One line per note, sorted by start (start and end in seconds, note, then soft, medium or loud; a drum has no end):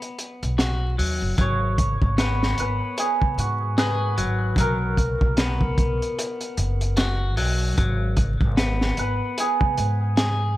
0.00 0.55 B3 medium
0.00 closed hi-hat soft
0.18 closed hi-hat medium
0.43 0.95 B1 medium
0.43 closed hi-hat soft
0.58 0.95 F#4 medium
0.58 snare loud
0.58 closed hi-hat medium
0.98 1.19 D#2 medium
0.98 1.36 F#3 medium
0.98 open hi-hat medium
1.22 1.36 F#1 medium
1.38 1.97 G#1 medium
1.38 1.76 F#3 medium
1.38 3.96 C#5 medium
1.38 kick loud
1.38 closed hi-hat medium
1.78 kick medium
1.78 closed hi-hat medium
2.02 2.55 G#1 loud
2.02 kick medium
2.18 3.75 B3 medium
2.18 2.60 B4 medium
2.18 snare medium
2.18 closed hi-hat medium
2.43 snare medium
2.58 2.79 G#1 medium
2.58 3.78 B4 loud
2.58 closed hi-hat medium
2.98 3.10 G#4 medium
2.98 closed hi-hat medium
3.22 kick medium
3.38 4.20 G#2 loud
3.38 6.64 F#4 medium
3.38 closed hi-hat medium
3.78 4.15 G#4 medium
3.78 4.66 B4 loud
3.78 snare loud
3.78 closed hi-hat medium
4.18 4.54 G#1 medium
4.18 4.56 F#3 loud
4.18 closed hi-hat medium
4.56 5.16 B1 medium
4.56 4.96 F#3 medium
4.56 kick loud
4.56 closed hi-hat medium
4.60 7.43 A#4 medium
4.97 kick medium
4.97 closed hi-hat medium
5.21 5.75 B1 medium
5.21 kick medium
5.37 6.95 B3 medium
5.37 snare medium
5.37 closed hi-hat medium
5.61 kick medium
5.78 5.99 B1 medium
5.78 kick medium
5.78 closed hi-hat medium
6.02 closed hi-hat soft
6.19 closed hi-hat medium
6.41 closed hi-hat soft
6.57 7.38 F#1 loud
6.57 closed hi-hat medium
6.81 closed hi-hat soft
6.97 7.34 F#4 medium
6.97 snare medium
6.97 closed hi-hat medium
7.37 7.74 B1 medium
7.37 7.76 F#3 loud
7.37 open hi-hat medium
7.78 8.37 G#1 loud
7.78 8.16 F#3 medium
7.78 kick loud
7.78 closed hi-hat medium
8.17 kick medium
8.17 closed hi-hat medium
8.41 8.94 G#1 loud
8.41 kick medium
8.57 10.14 B3 loud
8.57 snare loud
8.57 closed hi-hat medium
8.81 snare medium
8.97 9.19 G#1 medium
8.97 10.57 B4 loud
8.97 closed hi-hat medium
9.38 10.57 G#4 medium
9.38 closed hi-hat medium
9.61 kick medium
9.77 10.57 G#2 loud
9.77 closed hi-hat medium
10.17 10.54 G#4 medium
10.17 snare loud
10.17 closed hi-hat medium